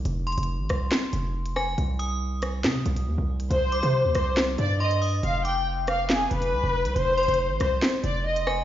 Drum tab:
HH |x---xxxx----x---x---x-----x-----|x---x-------x---x---x-x-------x-|x---x-x-----x---x---x-----x-o---|x---x-------x---x---x-x-------x-|
CP |----------------x---------------|----------------x---------------|----------------x---------------|----------------x---------------|
SD |------------r---o-----------r---|------------r---o---------------|------------r---o---------------|------------r---o---------------|

HH |x---xxxx----x---x---x-----x-----|
CP |----------------x---------------|
SD |------------r---o-----------r---|